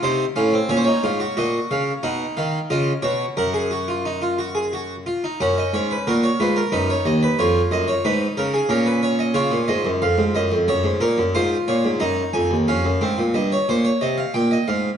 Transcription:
0.03 0.23 C3 medium
0.03 0.23 D#4 medium
0.03 0.24 C5 medium
0.36 0.57 A2 medium
0.36 0.52 C#4 medium
0.36 0.57 F5 medium
0.53 0.69 C4 medium
0.69 0.90 A#2 medium
0.69 0.86 C#4 medium
0.69 0.76 C#5 medium
0.77 0.84 C5 medium
0.84 1.03 D#4 medium
0.84 1.35 C#5 medium
1.03 1.24 G#2 medium
1.03 1.20 F4 medium
1.20 1.36 F#4 medium
1.37 1.58 A#2 medium
1.37 2.01 F#4 medium
1.37 1.58 D#5 medium
1.71 1.91 C#3 medium
1.71 1.91 F5 medium
2.03 2.24 B2 medium
2.03 2.68 D#4 medium
2.03 2.24 F#5 medium
2.37 2.58 D#3 medium
2.37 2.57 F5 medium
2.70 2.91 C#3 medium
2.70 2.91 F4 medium
2.70 2.91 D#5 medium
3.02 3.24 B2 medium
3.02 3.24 F#4 medium
3.02 3.23 C#5 medium
3.37 5.03 F#2 medium
3.37 3.53 A#4 medium
3.37 5.03 F#5 medium
3.54 3.70 G#4 medium
3.71 3.87 F#4 medium
3.88 4.04 F4 soft
4.05 4.21 D#4 medium
4.22 4.38 F4 medium
4.39 4.55 F#4 medium
4.55 4.72 G#4 medium
4.73 4.94 F#4 medium
5.06 5.23 F4 medium
5.24 5.40 D#4 soft
5.40 5.61 F#2 medium
5.40 6.06 C#4 medium
5.40 5.57 F#5 medium
5.58 5.74 D#5 medium
5.73 5.94 G#2 medium
5.73 5.90 C#5 medium
5.91 6.07 B4 soft
6.07 6.28 A#2 medium
6.07 6.28 F#4 medium
6.07 6.24 A#4 medium
6.23 6.40 C#5 medium
6.40 6.61 G#2 medium
6.40 6.61 F4 medium
6.40 6.57 B4 medium
6.56 6.73 A#4 medium
6.72 6.93 F#2 medium
6.72 7.37 D#4 medium
6.72 6.89 B4 medium
6.90 7.06 C#5 medium
7.05 7.26 D#2 medium
7.05 7.22 D#5 medium
7.23 7.39 B4 medium
7.39 7.60 F2 medium
7.39 8.03 F4 medium
7.39 7.60 C#5 medium
7.71 7.92 F#2 medium
7.71 7.88 D#5 medium
7.88 8.05 C#5 medium
8.05 8.26 G#2 medium
8.05 8.69 D#4 medium
8.05 8.25 B4 medium
8.37 8.58 C#3 medium
8.37 8.54 A#4 medium
8.54 8.70 G#4 medium
8.69 9.34 A#2 medium
8.69 9.34 C#4 medium
8.69 8.86 A#4 medium
8.86 9.03 B4 medium
9.03 9.19 C#5 medium
9.19 9.36 D#5 medium
9.34 9.51 C#3 medium
9.34 11.30 F4 medium
9.34 9.56 C#5 loud
9.52 9.69 A#2 medium
9.68 9.85 G#2 medium
9.68 9.89 D#5 loud
9.85 10.02 F#2 medium
10.02 10.19 F2 medium
10.02 10.23 F5 medium
10.18 10.35 G#2 medium
10.35 10.51 F#2 medium
10.35 10.56 D#5 medium
10.52 10.68 F2 medium
10.68 10.85 F#2 medium
10.68 10.89 C#5 loud
10.84 11.01 G#2 medium
11.01 11.17 A#2 medium
11.01 11.22 A#4 medium
11.18 11.34 F#2 medium
11.35 11.56 G#2 medium
11.35 11.99 F4 medium
11.35 11.55 C5 loud
11.68 11.84 A#2 medium
11.68 11.89 C#5 medium
11.85 12.01 G#2 medium
12.00 12.21 F#2 medium
12.00 12.65 D#4 medium
12.00 12.21 D#5 medium
12.33 12.50 F2 medium
12.33 12.54 G#5 medium
12.51 12.67 D#2 medium
12.68 12.84 F2 medium
12.68 12.89 C#4 medium
12.68 13.33 F5 medium
12.85 13.01 F#2 medium
13.01 13.18 G#2 medium
13.01 13.22 C4 medium
13.18 13.34 A#2 medium
13.34 13.55 G2 medium
13.34 13.51 D#5 medium
13.52 13.68 C#5 medium
13.69 13.89 A#2 medium
13.69 13.85 C5 medium
13.84 14.01 C#5 medium
14.01 14.22 C3 medium
14.01 14.18 D#5 medium
14.18 14.34 F5 medium
14.34 14.55 A#2 medium
14.34 14.51 G5 medium
14.51 14.67 D#5 medium
14.68 14.89 G#2 medium
14.68 14.88 F5 medium

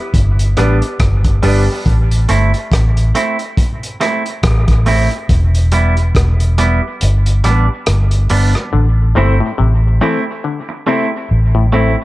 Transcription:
0.14 0.54 G1 medium
0.14 kick loud
0.14 closed hi-hat medium
0.39 closed hi-hat medium
0.57 0.80 A1 medium
0.57 0.79 G3 medium
0.57 0.73 B3 medium
0.57 0.79 B3 medium
0.57 0.73 D4 medium
0.57 0.80 D4 medium
0.57 0.74 G4 medium
0.57 0.74 B4 loud
0.57 cross-stick medium
0.57 closed hi-hat medium
0.82 0.89 G4 soft
0.82 0.89 B4 soft
0.82 closed hi-hat soft
1.00 1.40 G1 medium
1.00 kick loud
1.00 cross-stick loud
1.00 closed hi-hat medium
1.24 kick medium
1.24 closed hi-hat medium
1.42 1.66 G1 medium
1.42 1.65 G3 medium
1.42 1.59 B3 medium
1.42 1.65 B3 medium
1.42 1.59 D4 medium
1.42 1.66 D4 medium
1.42 1.59 G4 medium
1.42 1.60 B4 loud
1.42 open hi-hat medium
1.68 1.75 G4 soft
1.68 1.75 B4 soft
1.86 2.26 A1 medium
1.86 kick loud
1.86 closed hi-hat medium
2.11 closed hi-hat medium
2.29 2.52 G1 medium
2.29 2.51 A3 medium
2.29 2.51 C4 medium
2.29 2.51 E4 medium
2.29 closed hi-hat medium
2.54 closed hi-hat soft
2.72 3.11 A1 loud
2.72 kick loud
2.72 cross-stick loud
2.72 closed hi-hat medium
2.97 closed hi-hat soft
3.15 3.37 A3 medium
3.15 3.37 C4 medium
3.15 3.37 E4 medium
3.15 closed hi-hat medium
3.39 closed hi-hat soft
3.57 kick loud
3.57 closed hi-hat loud
3.83 closed hi-hat medium
4.00 4.22 A3 medium
4.00 4.23 C4 medium
4.00 4.23 E4 medium
4.00 cross-stick medium
4.00 closed hi-hat medium
4.26 closed hi-hat soft
4.43 5.07 A1 medium
4.43 kick loud
4.43 cross-stick loud
4.43 closed hi-hat medium
4.68 kick medium
4.68 closed hi-hat medium
4.86 5.08 A3 medium
4.86 5.09 C4 loud
4.86 5.09 E4 loud
4.86 open hi-hat medium
5.11 closed hi-hat soft
5.29 6.11 E1 loud
5.29 kick loud
5.29 closed hi-hat medium
5.55 closed hi-hat soft
5.72 5.94 G3 medium
5.72 5.94 B3 medium
5.72 5.95 E4 medium
5.72 closed hi-hat medium
5.97 closed hi-hat soft
6.15 6.79 E1 medium
6.15 kick loud
6.15 cross-stick loud
6.15 closed hi-hat medium
6.40 closed hi-hat soft
6.58 6.80 G3 medium
6.58 6.80 B3 medium
6.58 6.81 E4 medium
6.58 closed hi-hat medium
7.01 7.41 G1 loud
7.01 closed hi-hat medium
7.26 closed hi-hat medium
7.44 7.67 A1 medium
7.44 7.66 G3 medium
7.44 7.66 B3 medium
7.44 7.67 D4 medium
7.44 cross-stick medium
7.44 closed hi-hat medium
7.86 8.27 G1 medium
7.86 cross-stick loud
7.86 closed hi-hat medium
8.11 closed hi-hat medium
8.29 8.53 G1 medium
8.29 8.52 G3 medium
8.29 8.52 B3 medium
8.29 8.52 D4 medium
8.29 open hi-hat medium
8.54 cross-stick medium
8.54 closed hi-hat soft
8.73 9.12 A1 loud
8.73 8.88 D3 medium
9.15 9.39 G1 medium
9.15 9.31 C3 medium
9.15 9.38 A3 medium
9.15 9.32 C4 medium
9.15 9.38 C4 medium
9.15 9.32 E4 medium
9.15 9.38 E4 medium
9.15 9.32 A4 medium
9.15 9.32 C5 medium
9.40 9.52 A2 medium
9.58 9.98 A1 loud
9.58 9.74 C3 medium
10.01 10.17 E3 medium
10.01 10.23 A3 medium
10.01 10.18 C4 medium
10.01 10.23 C4 medium
10.01 10.18 E4 medium
10.01 10.24 E4 medium
10.01 10.18 A4 medium
10.01 10.18 C5 loud
10.44 10.60 D3 medium
10.69 muted clean electric guitar stroke soft
10.87 11.03 C3 medium
10.87 11.09 A3 medium
10.87 11.03 C4 loud
10.87 11.09 C4 medium
10.87 11.04 E4 medium
10.87 11.09 E4 medium
10.87 11.04 A4 medium
10.87 11.04 C5 loud
11.31 11.94 A1 medium
11.55 11.66 A2 medium
11.72 11.88 A2 medium
11.72 11.94 A3 medium
11.72 11.89 C4 medium
11.72 11.95 C4 medium
11.72 11.89 E4 medium
11.72 11.95 E4 medium
11.72 11.90 A4 medium
11.72 11.90 C5 medium
11.97 muted clean electric guitar stroke soft

